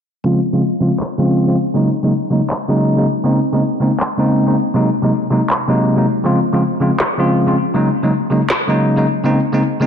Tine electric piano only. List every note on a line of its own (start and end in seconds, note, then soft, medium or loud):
0.24 0.38 C#3 medium
0.24 0.38 F3 medium
0.24 0.39 G#3 medium
0.24 0.39 C4 medium
0.24 0.39 F4 medium
0.53 0.61 C#3 medium
0.53 0.61 F3 medium
0.53 0.61 G#3 medium
0.53 0.62 C4 medium
0.53 0.62 F4 medium
0.80 0.89 C#3 medium
0.80 0.90 F3 medium
0.80 0.90 G#3 medium
0.80 0.90 C4 medium
0.80 0.90 F4 medium
1.18 1.45 C#3 medium
1.18 1.45 F3 medium
1.18 1.45 G#3 medium
1.18 1.45 C4 medium
1.18 1.46 F4 medium
1.46 1.55 C#3 medium
1.46 1.55 F3 medium
1.46 1.55 G#3 medium
1.46 1.56 C4 medium
1.46 1.56 F4 medium
1.74 1.88 C#3 medium
1.74 1.88 F#3 medium
1.74 1.89 G#3 medium
1.74 1.89 A#3 medium
1.74 1.89 D#4 medium
2.03 2.11 C#3 medium
2.03 2.11 F#3 medium
2.03 2.12 G#3 medium
2.03 2.12 A#3 medium
2.03 2.12 D#4 medium
2.30 2.39 C#3 medium
2.30 2.40 F#3 medium
2.30 2.40 G#3 medium
2.30 2.40 A#3 medium
2.30 2.40 D#4 medium
2.68 2.95 C#3 medium
2.68 2.95 F#3 medium
2.68 2.95 G#3 medium
2.68 2.95 A#3 medium
2.68 2.96 D#4 medium
2.96 3.05 C#3 medium
2.96 3.05 F#3 medium
2.96 3.05 G#3 medium
2.96 3.06 A#3 medium
2.96 3.06 D#4 medium
3.24 3.38 C#3 medium
3.24 3.38 G#3 medium
3.24 3.39 A#3 medium
3.24 3.39 C4 medium
3.24 3.39 D#4 medium
3.53 3.61 C#3 medium
3.53 3.61 G#3 medium
3.53 3.62 A#3 medium
3.53 3.62 C4 medium
3.53 3.62 D#4 medium
3.80 3.89 C#3 medium
3.80 3.90 G#3 medium
3.80 3.90 A#3 medium
3.80 3.90 C4 medium
3.80 3.90 D#4 medium
4.17 4.44 C#3 medium
4.17 4.45 G#3 medium
4.17 4.45 A#3 medium
4.17 4.45 C4 medium
4.17 4.45 D#4 medium
4.46 4.55 C#3 medium
4.46 4.55 G#3 medium
4.46 4.55 A#3 medium
4.46 4.55 C4 medium
4.46 4.56 D#4 medium
4.74 4.88 C3 medium
4.74 4.88 F#3 medium
4.74 4.89 G#3 medium
4.74 4.89 A#3 medium
4.74 4.89 D#4 medium
5.02 5.11 C3 medium
5.02 5.11 F#3 medium
5.02 5.11 G#3 medium
5.02 5.12 A#3 medium
5.02 5.12 D#4 medium
5.30 5.39 C3 medium
5.30 5.40 F#3 medium
5.30 5.40 G#3 medium
5.30 5.40 A#3 medium
5.30 5.40 D#4 medium
5.68 5.94 C3 medium
5.68 5.95 F#3 medium
5.68 5.95 G#3 medium
5.68 5.95 A#3 medium
5.68 5.95 D#4 medium
5.96 6.05 C3 medium
5.96 6.05 F#3 medium
5.96 6.05 G#3 medium
5.96 6.05 A#3 medium
5.96 6.06 D#4 medium
6.24 6.38 C#3 medium
6.24 6.38 F3 medium
6.24 6.39 G#3 medium
6.24 6.39 C4 medium
6.24 6.39 F4 medium
6.53 6.61 C#3 medium
6.53 6.61 F3 medium
6.53 6.61 G#3 medium
6.53 6.62 C4 medium
6.53 6.62 F4 medium
6.80 6.89 C#3 medium
6.80 6.90 F3 medium
6.80 6.90 G#3 medium
6.80 6.90 C4 medium
6.80 6.90 F4 medium
7.18 7.44 C#3 medium
7.18 7.45 F3 medium
7.18 7.45 G#3 medium
7.18 7.45 C4 medium
7.18 7.45 F4 loud
7.46 7.55 C#3 medium
7.46 7.55 F3 medium
7.46 7.55 G#3 medium
7.46 7.55 C4 medium
7.46 7.56 F4 medium
7.74 7.88 C#3 medium
7.74 7.88 F#3 medium
7.74 7.88 G#3 medium
7.74 7.89 A#3 medium
7.74 7.89 D#4 medium
8.02 8.11 C#3 medium
8.02 8.11 F#3 medium
8.02 8.11 G#3 medium
8.02 8.12 A#3 medium
8.02 8.12 D#4 medium
8.30 8.40 C#3 medium
8.30 8.40 F#3 medium
8.30 8.40 G#3 medium
8.30 8.40 A#3 medium
8.30 8.41 D#4 medium
8.67 8.94 C#3 medium
8.67 8.95 F#3 medium
8.67 8.95 G#3 medium
8.67 8.95 A#3 medium
8.67 8.95 D#4 medium
8.96 9.05 C#3 medium
8.96 9.05 F#3 medium
8.96 9.05 G#3 medium
8.96 9.06 A#3 medium
8.96 9.06 D#4 medium
9.24 9.38 C#3 medium
9.24 9.38 G#3 medium
9.24 9.39 A#3 medium
9.24 9.39 C4 medium
9.24 9.39 D#4 medium
9.52 9.61 C#3 medium
9.52 9.61 G#3 medium
9.52 9.61 A#3 medium
9.52 9.62 C4 medium
9.52 9.62 D#4 medium
9.80 9.87 C#3 medium
9.80 9.87 G#3 medium
9.80 9.87 A#3 medium
9.80 9.87 C4 medium
9.80 9.87 D#4 medium